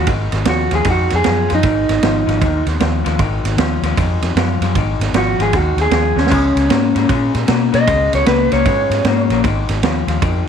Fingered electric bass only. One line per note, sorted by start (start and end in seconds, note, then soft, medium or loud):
0.07 0.30 G#1 medium
0.32 0.45 G#1 medium
0.46 0.69 D#2 medium
0.71 0.84 D#2 medium
0.85 1.08 F2 medium
1.12 1.24 F2 medium
1.26 1.48 F#2 medium
1.51 1.63 F#2 medium
1.63 1.86 G#1 medium
1.89 2.01 G#1 medium
2.03 2.25 G#1 medium
2.27 2.40 G#1 medium
2.41 2.64 D#2 medium
2.66 2.79 D#2 medium
2.81 3.03 D#2 medium
3.06 3.18 D#2 medium
3.19 3.42 G#1 medium
3.44 3.56 G#1 medium
3.57 3.80 D#2 medium
3.82 3.95 D#2 medium
3.97 4.20 F2 medium
4.22 4.35 F2 loud
4.35 4.59 F#2 medium
4.61 4.74 F#2 medium
4.75 4.98 G#1 medium
4.99 5.12 G#1 medium
5.13 5.36 G#1 medium
5.39 5.52 G#1 medium
5.53 5.76 D#2 medium
5.77 5.90 D#2 medium
5.91 6.14 D#2 medium
6.16 6.29 D#2 medium
6.31 6.54 C#2 medium
6.55 6.68 C#2 medium
6.69 6.92 G#2 medium
6.95 7.08 G#2 medium
7.09 7.32 A#2 medium
7.35 7.47 A#2 medium
7.48 7.71 B2 medium
7.74 7.86 B2 loud
7.87 8.10 C#2 medium
8.13 8.25 C#2 medium
8.27 8.49 C#2 medium
8.52 8.64 C#2 medium
8.66 8.88 G#2 medium
8.90 9.03 G#2 medium
9.04 9.27 G#2 medium
9.30 9.42 A#1 medium
9.44 9.67 G#1 medium
9.69 9.81 G#1 medium
9.83 10.05 D#2 medium
10.07 10.20 D#2 medium
10.22 10.45 F2 loud